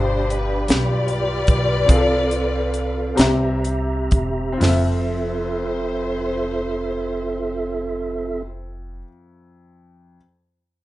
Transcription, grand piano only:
Already playing: G2 B2 F4 G4 D5
1.86 C3 C4 F4 G#4 F5
1.96 A4
3.15 C3 C4 G4 A#5
3.19 E5
4.52 C4
4.58 F2 F4
4.63 A4
4.69 E5

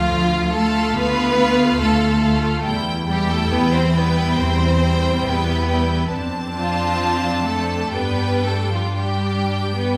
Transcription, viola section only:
Already playing: A3 F4
0.55 A3 F4
1.39 A3 F4
2.24 A3 F4
2.65 G3 E4
3.08 G3 E4
3.94 G3 E4
4.81 G3 E4
5.68 G3 E4
6.12 C4 D4
7.94 G3 D4
8.95 G3 D4

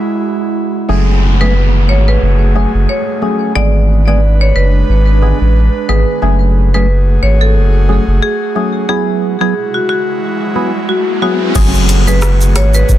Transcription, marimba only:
1.41 B4
1.89 C#5
2.08 B4
2.89 C#5
3.56 D5
4.08 D5
4.41 C#5
4.56 B4
5.89 B4
6.74 B4
7.23 C#5
7.41 A4
8.22 G#4
8.89 G#4
9.41 G#4
9.74 F#4
9.89 F#4
10.89 F#4
11.22 F#4
12.08 B4
12.56 C#5
12.75 B4

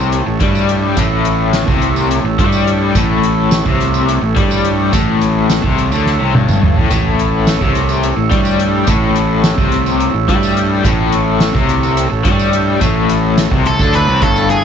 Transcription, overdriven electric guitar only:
Already playing: C3
0.27 A2
0.41 G3
0.97 A2
1.68 C3
2.26 A2
2.39 G3
2.96 A2
3.66 C3
4.22 A2
4.36 G3
4.92 A2
5.63 C3
5.92 D3
6.20 C3
6.33 G2
6.76 A2
6.90 A2
7.61 C3
8.17 A2
8.31 G3
8.88 A2
9.58 C3
10.15 A2
10.29 G3
10.84 A2
11.55 C3
12.10 A2
12.25 G3
12.81 A2
13.52 C3
13.79 D3
14.08 C3
14.21 G2

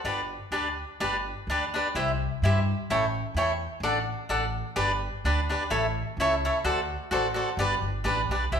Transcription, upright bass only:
0.04 G1
0.51 D2
1.00 G1
1.47 D2
1.95 C2
2.42 G2
2.90 A1
3.34 E2
3.80 A1
4.29 A1
4.76 G1
5.24 D2
5.71 A1
6.17 C#2
6.64 D2
7.11 A1
7.57 G1
7.82 G1
8.04 A1
8.29 B1
8.52 C2

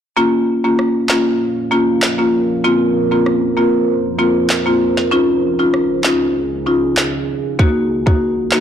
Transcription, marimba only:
0.17 A#3 C#4 F4
0.64 A#3 C#4 F4
1.09 A#3 C#4 F4
1.71 A#3 C#4 F4
2.18 A#3 C#4 F4
2.64 A#3 C4 F4
3.11 A#3 C4 F4
3.57 A#3 C4 F4
4.18 A#3 C4 F4
4.66 A#3 C4 F4
5.11 C#4 D#4 F4
5.59 C#4 D#4 F4
6.04 C#4 D#4 F4
6.66 C#4 D#4 F4
7.59 A#3 D#4 F#4
8.06 A#3 D#4 F#4
8.52 A#3 D#4 F#4

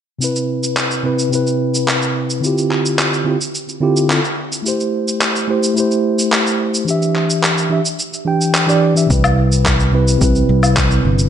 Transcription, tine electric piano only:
0.19 C3 C4 E4
0.24 B4
1.03 C3 C4 E4 B4
1.29 C3 C4 E4
1.35 B4
2.40 D3 C4 E4
2.45 F4 G4
3.25 D3 C4 E4 F4 G4
3.80 D3 C4 E4 F4 G4
4.08 D3 C4 E4 F4 A4
4.62 A3 E4 G4
4.68 C5
5.48 A3 E4 G4 C5
5.74 A3 E4
5.78 G4 C5
6.85 E3 D4
6.89 G4 E5
7.69 E3 D4 G4 E5
8.25 E3 D4 G4 G5
8.67 E3 D4 G4 D5
8.95 E3 D4 G4 E5
9.07 C3 C4
9.11 E4 B4
9.92 C3 C4 E4 B4
10.18 C3 C4 E4
10.24 B4

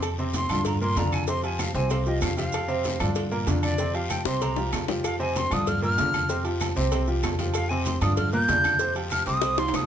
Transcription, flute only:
0.35 C6
0.66 A#5
0.82 C6
0.98 A#5
1.13 G#5
1.29 C6
1.45 G#5
1.60 F5
1.75 G#5
1.91 F5
2.07 D#5
2.23 F5
2.38 F5
3.63 D5
3.95 F5
4.10 G5
4.26 C6
4.42 A#5
5.05 F5
5.21 G#5
5.37 C6
5.53 D#6
5.68 F6
5.84 F6
7.55 F5
7.69 G#5
7.86 C6
8.02 D#6
8.17 F6
8.33 G6
9.12 F6
9.27 D#6
9.59 C6
9.76 D#6

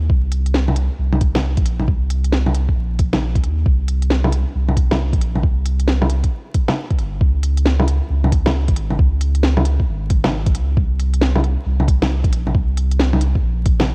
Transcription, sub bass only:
0.09 C2
0.99 C2
1.57 A#1
1.88 C2
2.76 A#1
3.43 D#2
3.65 C2
4.55 C2
5.13 A#1
5.43 C2
6.99 G1
7.21 C#2
8.10 C#2
8.69 G#1
8.99 C#2
9.89 G#1
10.55 C#2
10.77 C2
11.66 C2
12.24 A#1
12.55 C2
13.42 A#1

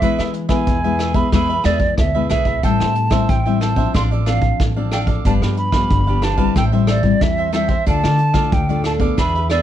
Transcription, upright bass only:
0.02 E2
0.19 E3
0.67 E2
1.32 E2
1.65 E2
1.98 D2
2.30 B1
2.63 A1
2.81 A2
3.29 A1
3.95 A1
4.60 A1
5.25 G1
5.41 G2
5.91 G1
6.56 A1
7.21 E2
7.87 D2
8.04 D3
8.53 D2
9.18 E2

